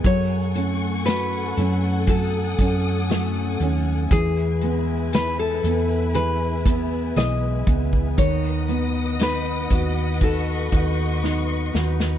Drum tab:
HH |x-x-x-x-x-x-x-x-|x-x-x-x-x-x-x-x-|x-x-x-x-x-x-----|
SD |----o-------o---|----o-------o---|----o-------o-oo|
BD |o-------o-o-----|o---------o---oo|o-----o-o-o-----|